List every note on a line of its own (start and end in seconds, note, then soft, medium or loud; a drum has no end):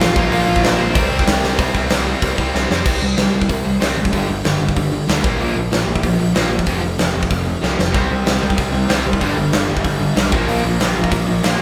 0.00 0.13 A1 loud
0.00 0.14 F2 loud
0.00 0.14 C3 loud
0.00 0.15 F3 loud
0.00 0.30 F4 medium
0.00 0.30 F5 medium
0.00 snare loud
0.00 open hi-hat medium
0.15 0.29 A#1 loud
0.15 0.93 A#2 loud
0.15 0.94 F3 loud
0.15 0.95 A#3 loud
0.15 kick loud
0.31 0.44 A#1 loud
0.31 0.61 F4 medium
0.31 0.63 F5 loud
0.31 open hi-hat medium
0.47 0.60 A#1 loud
0.56 kick medium
0.63 0.77 A#1 medium
0.63 0.79 D4 medium
0.63 0.80 D5 loud
0.63 snare loud
0.63 open hi-hat medium
0.78 0.93 A#1 medium
0.78 1.23 C4 medium
0.78 1.23 C5 medium
0.93 1.08 C2 loud
0.93 1.57 C3 medium
0.93 1.58 G3 medium
0.93 1.59 C4 loud
0.93 kick loud
0.93 open hi-hat medium
1.11 1.24 C2 medium
1.19 kick medium
1.27 1.40 C2 loud
1.27 snare loud
1.27 open hi-hat medium
1.43 1.56 C2 medium
1.43 snare medium
1.58 1.70 C2 medium
1.58 1.75 C3 medium
1.58 1.74 G3 loud
1.58 1.73 C4 loud
1.58 kick loud
1.58 open hi-hat medium
1.74 1.86 C2 loud
1.74 1.89 C3 medium
1.74 1.90 G3 medium
1.74 1.90 C4 medium
1.74 kick medium
1.90 2.14 C2 medium
1.90 2.05 C3 loud
1.90 2.05 G3 loud
1.90 2.04 C4 loud
1.90 snare loud
1.90 open hi-hat medium
2.05 2.20 C3 medium
2.05 2.21 G3 medium
2.05 2.21 C4 loud
2.21 2.34 C2 medium
2.21 2.38 C3 medium
2.21 2.37 G3 medium
2.21 2.36 C4 loud
2.21 kick loud
2.21 open hi-hat medium
2.38 2.49 C2 medium
2.38 2.52 C3 medium
2.38 2.53 G3 loud
2.38 2.53 C4 loud
2.38 kick medium
2.53 2.66 C2 medium
2.53 2.70 C3 medium
2.53 2.69 G3 medium
2.53 2.68 C4 medium
2.53 snare medium
2.70 2.82 F2 medium
2.70 2.84 C3 medium
2.70 2.85 G3 medium
2.70 2.85 C4 loud
2.70 snare loud
2.85 2.98 C2 medium
2.85 2.99 C3 medium
2.85 3.00 G3 medium
2.85 3.01 C4 loud
2.85 kick loud
2.85 crash loud
3.01 3.14 C2 medium
3.01 3.15 C3 medium
3.01 3.16 G3 medium
3.17 3.30 C2 medium
3.17 3.31 C3 medium
3.17 3.32 G3 medium
3.17 snare loud
3.17 open hi-hat medium
3.32 3.46 C2 medium
3.32 3.47 C3 medium
3.32 3.47 G3 medium
3.42 kick medium
3.49 3.62 C2 medium
3.49 3.63 C3 medium
3.49 3.63 G3 medium
3.49 kick loud
3.49 open hi-hat medium
3.65 3.78 C2 medium
3.65 3.79 C3 medium
3.65 3.79 G3 medium
3.80 3.94 C2 medium
3.80 3.96 C3 medium
3.80 3.96 G3 medium
3.80 3.96 C4 loud
3.80 snare loud
3.80 open hi-hat medium
3.97 4.09 A1 medium
3.97 4.11 C3 medium
3.97 4.11 G3 medium
4.05 kick medium
4.12 4.25 G1 medium
4.12 4.27 G2 medium
4.12 4.28 D3 medium
4.12 4.28 G3 loud
4.12 kick medium
4.12 open hi-hat medium
4.29 4.41 G1 medium
4.29 4.43 G2 medium
4.29 4.43 D3 medium
4.44 4.57 G1 medium
4.44 4.59 G2 medium
4.44 4.59 D3 medium
4.44 snare loud
4.44 open hi-hat medium
4.60 4.72 G1 medium
4.60 4.75 G2 medium
4.60 4.75 D3 medium
4.69 kick medium
4.77 5.00 G1 medium
4.77 4.91 G2 medium
4.77 4.91 D3 medium
4.77 kick medium
4.77 open hi-hat medium
4.92 5.07 G2 medium
4.92 5.07 D3 medium
5.08 5.20 D2 medium
5.08 5.23 G2 medium
5.08 5.23 D3 medium
5.08 5.24 G3 medium
5.08 snare loud
5.08 open hi-hat medium
5.23 5.36 A#1 medium
5.23 5.38 A#2 loud
5.23 5.39 F3 loud
5.23 5.39 A#3 loud
5.23 kick loud
5.39 5.52 A#1 medium
5.39 5.55 A#2 medium
5.39 5.55 F3 loud
5.39 5.55 A#3 loud
5.39 open hi-hat soft
5.56 5.68 A#1 medium
5.56 5.70 A#2 medium
5.56 5.70 F3 medium
5.71 5.84 A#1 medium
5.71 5.86 A#2 medium
5.71 5.86 F3 medium
5.71 snare loud
5.71 open hi-hat soft
5.87 5.99 A#1 medium
5.87 6.02 A#2 medium
5.87 6.02 F3 medium
5.96 kick medium
6.03 6.16 A#1 medium
6.03 6.18 A#2 medium
6.03 6.18 F3 medium
6.03 kick medium
6.03 open hi-hat medium
6.19 6.32 A#1 medium
6.19 6.33 A#2 medium
6.19 6.34 F3 medium
6.34 6.47 A#1 medium
6.34 6.49 A#2 medium
6.34 6.50 F3 medium
6.34 6.50 A#3 loud
6.34 snare loud
6.34 open hi-hat medium
6.50 6.63 A#1 medium
6.50 6.65 A#2 medium
6.50 6.65 F3 medium
6.59 kick medium
6.66 6.79 F1 medium
6.66 6.81 F2 medium
6.66 6.81 C3 loud
6.66 6.82 F3 loud
6.66 kick medium
6.66 open hi-hat medium
6.82 6.95 F1 medium
6.82 6.97 F2 medium
6.82 6.97 C3 medium
6.98 7.11 F1 medium
6.98 7.12 F2 medium
6.98 7.13 C3 medium
6.98 snare loud
6.98 open hi-hat medium
7.13 7.27 F1 medium
7.13 7.28 F2 medium
7.13 7.29 C3 medium
7.23 kick medium
7.30 7.55 F1 medium
7.30 7.44 F2 medium
7.30 7.45 C3 medium
7.30 kick loud
7.30 open hi-hat medium
7.46 7.60 F2 medium
7.46 7.61 C3 medium
7.61 7.75 C2 medium
7.61 7.76 F2 medium
7.61 7.77 C3 medium
7.61 7.77 F3 loud
7.61 snare medium
7.78 7.91 F1 medium
7.78 7.92 F2 medium
7.78 7.92 C3 medium
7.78 snare medium
7.94 8.07 C2 medium
7.94 8.08 C3 medium
7.94 8.09 G3 loud
7.94 8.10 C4 loud
7.94 kick loud
7.94 open hi-hat soft
8.10 8.23 C2 medium
8.10 8.24 C3 medium
8.10 8.24 G3 medium
8.25 8.38 C2 medium
8.25 8.39 C3 medium
8.25 8.40 G3 medium
8.25 snare loud
8.25 open hi-hat soft
8.40 8.54 C2 medium
8.40 8.55 C3 medium
8.40 8.56 G3 medium
8.40 9.20 C4 medium
8.45 9.22 C3 medium
8.50 kick medium
8.56 8.70 C2 medium
8.56 8.71 C3 medium
8.56 8.72 G3 medium
8.56 kick loud
8.56 open hi-hat medium
8.72 8.85 C2 medium
8.72 8.87 C3 medium
8.72 8.87 G3 medium
8.88 9.02 C2 medium
8.88 9.04 C3 medium
8.88 9.04 G3 medium
8.88 9.04 C4 medium
8.88 snare loud
8.88 open hi-hat medium
9.05 9.23 C2 medium
9.05 9.20 C3 medium
9.05 9.20 G3 medium
9.13 kick medium
9.20 9.34 G1 loud
9.20 9.35 G2 medium
9.20 9.36 D3 loud
9.20 9.36 G3 medium
9.20 kick medium
9.20 open hi-hat medium
9.36 9.50 G1 loud
9.36 9.51 G2 medium
9.36 9.51 D3 medium
9.52 9.66 G1 medium
9.52 9.67 G2 medium
9.52 9.67 D3 loud
9.52 snare loud
9.52 open hi-hat medium
9.68 9.81 G1 medium
9.68 9.83 G2 medium
9.68 9.83 D3 medium
9.68 10.31 G3 medium
9.77 kick medium
9.84 10.09 G1 medium
9.84 9.98 G2 medium
9.84 9.99 D3 medium
9.84 kick medium
9.84 open hi-hat medium
9.99 10.15 G2 medium
9.99 10.15 D3 medium
10.16 10.29 B1 medium
10.16 10.31 G2 medium
10.16 10.31 D3 loud
10.16 10.32 G3 loud
10.16 snare loud
10.16 open hi-hat medium
10.32 10.45 A#1 loud
10.32 10.46 A#2 medium
10.32 10.47 F3 loud
10.32 10.48 A#3 loud
10.32 kick loud
10.48 10.61 A#1 loud
10.48 10.63 A#2 loud
10.48 10.63 F3 medium
10.48 10.64 A#3 loud
10.48 open hi-hat medium
10.64 10.76 A#1 medium
10.64 10.79 A#2 medium
10.64 10.79 F3 medium
10.80 10.92 A#1 medium
10.80 10.94 A#2 medium
10.80 10.94 F3 loud
10.80 11.60 A#3 medium
10.80 snare loud
10.80 open hi-hat medium
10.95 11.08 A#1 medium
10.95 11.09 A#2 medium
10.95 11.10 F3 medium
11.04 kick medium
11.10 11.24 A#1 medium
11.10 11.26 A#2 medium
11.10 11.26 F3 medium
11.10 kick loud
11.10 open hi-hat medium
11.27 11.40 A#1 medium
11.27 11.41 A#2 medium
11.27 11.42 F3 medium
11.43 11.56 A#1 medium
11.43 11.58 A#2 medium
11.43 11.58 F3 medium
11.43 11.59 A#3 medium
11.43 snare loud
11.43 open hi-hat medium